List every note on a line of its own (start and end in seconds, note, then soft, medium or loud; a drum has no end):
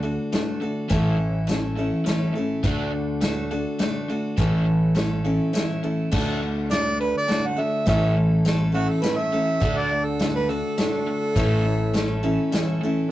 0.00 0.17 D2 medium
0.00 0.29 D3 medium
0.00 0.30 A3 medium
0.00 0.33 F#4 soft
0.00 0.32 A4 medium
0.05 0.33 D4 soft
0.32 0.59 D3 medium
0.32 0.62 A3 medium
0.32 0.59 A3 medium
0.32 0.62 D4 medium
0.32 0.62 F#4 medium
0.32 0.60 A4 medium
0.32 snare medium
0.32 closed hi-hat medium
0.60 0.87 D3 medium
0.60 0.87 A3 medium
0.60 0.90 D4 soft
0.60 0.90 F#4 soft
0.60 0.89 A4 soft
0.89 1.90 A1 medium
0.89 1.16 A2 medium
0.89 1.48 A2 medium
0.89 1.17 E3 loud
0.89 1.48 E3 medium
0.89 1.17 A3 loud
0.89 1.47 A3 medium
0.89 1.46 C#4 medium
0.89 1.47 E4 medium
0.89 1.48 A4 medium
0.89 kick loud
0.89 closed hi-hat medium
1.17 1.44 A2 medium
1.17 1.45 E3 medium
1.47 1.74 A2 medium
1.47 1.74 E3 medium
1.47 1.77 A3 medium
1.47 1.77 C#4 medium
1.47 1.77 E4 medium
1.47 1.76 A4 medium
1.47 snare medium
1.47 closed hi-hat medium
1.76 2.03 A2 medium
1.76 2.03 E3 medium
1.76 2.05 A3 soft
1.76 2.05 C#4 soft
1.76 2.06 E4 medium
1.76 2.06 A4 soft
2.04 2.31 A2 medium
2.04 2.32 E3 medium
2.04 2.35 A3 medium
2.04 2.35 C#4 medium
2.04 2.35 E4 medium
2.04 2.34 A4 medium
2.04 snare medium
2.04 closed hi-hat medium
2.34 2.61 A2 medium
2.34 2.61 E3 medium
2.34 2.64 E4 soft
2.34 2.64 A4 medium
2.38 2.63 A3 soft
2.38 2.64 C#4 soft
2.63 3.64 D2 medium
2.63 2.90 D3 medium
2.63 3.22 D3 medium
2.63 2.90 A3 loud
2.63 3.21 A3 medium
2.63 2.92 D4 loud
2.63 3.21 D4 medium
2.63 3.22 F#4 medium
2.63 3.22 A4 medium
2.63 kick loud
2.63 closed hi-hat medium
2.91 3.18 D3 medium
2.91 3.19 A3 medium
3.21 3.48 D3 medium
3.21 3.51 A3 medium
3.21 3.48 A3 medium
3.21 3.51 D4 medium
3.21 3.50 F#4 medium
3.21 3.50 A4 medium
3.21 snare medium
3.21 closed hi-hat medium
3.51 3.77 D3 medium
3.51 3.77 A3 medium
3.51 3.79 D4 soft
3.51 3.79 F#4 medium
3.51 3.80 A4 medium
3.79 4.06 D3 medium
3.79 4.09 A3 medium
3.79 4.06 A3 medium
3.79 4.09 D4 medium
3.79 4.09 F#4 medium
3.79 4.08 A4 medium
3.79 snare medium
3.79 closed hi-hat medium
4.09 4.35 D3 medium
4.09 4.36 A3 medium
4.09 4.38 D4 soft
4.09 4.39 F#4 soft
4.09 4.38 A4 soft
4.37 5.38 A1 medium
4.37 4.65 A2 medium
4.37 4.96 A2 medium
4.37 4.65 E3 medium
4.37 4.96 E3 medium
4.37 4.94 A3 medium
4.37 4.66 A3 medium
4.37 4.95 C#4 medium
4.37 4.96 E4 medium
4.37 4.96 A4 medium
4.37 kick loud
4.37 closed hi-hat medium
4.66 4.93 A2 medium
4.66 4.93 E3 medium
4.95 5.22 A2 medium
4.95 5.22 E3 medium
4.95 5.25 A3 medium
4.95 5.24 C#4 medium
4.95 5.24 E4 medium
4.95 5.23 A4 medium
4.95 snare medium
4.95 closed hi-hat medium
5.25 5.51 A2 medium
5.25 5.51 E3 medium
5.25 5.52 A3 soft
5.25 5.52 C#4 soft
5.25 5.53 E4 medium
5.25 5.54 A4 medium
5.53 5.80 A2 medium
5.53 5.81 E3 medium
5.53 5.83 A3 medium
5.53 5.83 C#4 medium
5.53 5.83 E4 medium
5.53 5.82 A4 medium
5.53 snare medium
5.53 closed hi-hat medium
5.83 6.10 A2 medium
5.83 6.10 E3 medium
5.83 6.11 A3 soft
5.83 6.12 C#4 soft
5.83 6.12 E4 soft
5.83 6.12 A4 medium
6.12 7.13 D2 medium
6.12 6.70 D3 medium
6.12 6.40 D3 medium
6.12 6.69 A3 medium
6.12 6.40 A3 medium
6.12 6.70 D4 medium
6.12 6.40 D4 loud
6.12 6.70 F#4 loud
6.12 6.72 A4 medium
6.12 kick loud
6.12 crash loud
6.42 6.69 D3 medium
6.42 6.68 A3 medium
6.70 6.98 D3 medium
6.70 7.27 A3 medium
6.70 6.98 A3 medium
6.70 7.27 D4 medium
6.70 7.28 F#4 medium
6.70 7.29 A4 medium
6.70 6.99 D5 medium
6.70 snare medium
6.70 closed hi-hat medium
7.00 7.27 D3 medium
7.00 7.27 A3 medium
7.00 7.14 B4 medium
7.17 7.48 D5 medium
7.28 7.56 D3 medium
7.28 7.58 A3 medium
7.28 7.56 A3 medium
7.28 7.57 D4 medium
7.28 7.55 F#4 medium
7.28 7.55 A4 medium
7.28 snare medium
7.28 closed hi-hat medium
7.46 7.62 F#5 medium
7.56 7.85 D3 medium
7.56 7.85 A3 medium
7.56 7.86 D4 soft
7.56 7.87 F#4 soft
7.56 7.86 A4 medium
7.56 7.87 E5 medium
7.86 8.87 A1 medium
7.86 8.45 A2 medium
7.86 8.15 A2 medium
7.86 8.45 E3 medium
7.86 8.15 E3 medium
7.86 8.45 A3 medium
7.86 8.15 A3 loud
7.86 8.44 C#4 medium
7.86 8.46 E4 medium
7.86 8.47 A4 medium
7.86 8.16 E5 loud
7.86 kick loud
7.86 closed hi-hat medium
8.17 8.43 A2 medium
8.17 8.43 E3 medium
8.45 8.72 A2 medium
8.45 8.72 E3 medium
8.45 8.74 A3 medium
8.45 8.73 C#4 medium
8.45 8.73 E4 medium
8.45 8.71 A4 medium
8.45 snare medium
8.45 closed hi-hat medium
8.72 9.01 A2 medium
8.72 9.01 E3 medium
8.72 9.01 A3 soft
8.72 9.01 C#4 soft
8.72 9.02 E4 medium
8.72 8.91 F#4 medium
8.72 9.02 A4 medium
8.90 9.04 A4 medium
9.02 9.30 A2 medium
9.02 9.30 E3 medium
9.02 9.32 A3 medium
9.02 9.32 C#4 medium
9.02 9.32 E4 medium
9.02 9.32 A4 medium
9.02 9.19 B4 medium
9.02 snare medium
9.02 closed hi-hat medium
9.17 9.79 E5 medium
9.33 9.59 A2 medium
9.33 9.59 E3 medium
9.33 9.60 A3 soft
9.33 9.61 C#4 soft
9.33 9.61 E4 soft
9.33 9.61 A4 medium
9.60 10.62 D2 medium
9.60 10.19 D3 medium
9.60 9.89 D3 medium
9.60 10.20 A3 medium
9.60 9.89 A3 loud
9.60 10.20 D4 medium
9.60 9.89 D4 loud
9.60 10.20 F#4 medium
9.60 10.22 A4 medium
9.60 kick loud
9.60 closed hi-hat medium
9.77 10.06 D5 medium
9.91 10.17 D3 medium
9.91 10.17 A3 medium
10.05 10.33 A4 medium
10.20 10.47 D3 medium
10.20 10.49 A3 medium
10.20 10.47 A3 medium
10.20 10.49 D4 medium
10.20 10.49 F#4 medium
10.20 10.48 A4 medium
10.20 snare medium
10.20 closed hi-hat medium
10.36 10.51 B4 medium
10.49 10.75 D3 medium
10.49 10.75 A3 medium
10.49 10.78 D4 soft
10.49 10.78 F#4 soft
10.49 10.78 A4 soft
10.49 10.77 A4 medium
10.78 11.04 D3 medium
10.78 11.37 A3 medium
10.78 11.05 A3 medium
10.78 11.36 D4 medium
10.78 11.36 F#4 medium
10.78 12.49 A4 loud
10.78 11.36 A4 medium
10.78 snare medium
10.78 closed hi-hat medium
11.07 11.33 D3 medium
11.07 11.33 A3 medium
11.36 12.36 A1 medium
11.36 11.94 A2 medium
11.36 11.63 A2 medium
11.36 11.95 E3 medium
11.36 11.64 E3 loud
11.36 11.93 A3 medium
11.36 11.64 A3 loud
11.36 11.93 C#4 medium
11.36 11.95 E4 medium
11.36 11.95 A4 medium
11.36 kick loud
11.36 closed hi-hat medium
11.65 11.91 A2 medium
11.65 11.92 E3 medium
11.94 12.20 A2 medium
11.94 12.20 E3 medium
11.94 12.23 A3 medium
11.94 12.24 C#4 medium
11.94 12.22 E4 medium
11.94 12.22 A4 medium
11.94 snare medium
11.94 closed hi-hat medium
12.23 12.50 A2 medium
12.23 12.50 E3 medium
12.23 12.51 A3 soft
12.23 12.52 C#4 medium
12.23 12.53 E4 medium
12.23 12.52 A4 medium
12.52 12.78 A2 medium
12.52 12.79 E3 medium
12.52 12.81 A3 medium
12.52 12.82 C#4 medium
12.52 12.82 E4 medium
12.52 12.82 A4 medium
12.52 snare medium
12.52 closed hi-hat medium
12.81 13.07 A2 medium
12.81 13.07 E3 medium
12.81 13.11 C#4 soft
12.81 13.11 E4 medium
12.81 13.11 A4 medium
12.85 13.11 A3 soft